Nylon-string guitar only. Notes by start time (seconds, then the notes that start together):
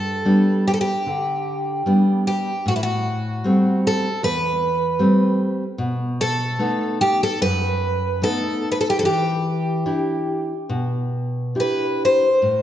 Already playing: G2
0.25 G3 B3 D4
1.06 D3
1.86 G3 B3 D4
2.66 A2
3.44 G3 A3 C4
4.23 E2
4.99 G3 A3 C4
5.78 B2
6.59 A3 B3 D#4
7.42 F#2
8.22 A3 B3 D#4
9.03 E3
9.86 D4 E4 G4
10.69 B2
11.55 D4 E4 G4
12.42 A2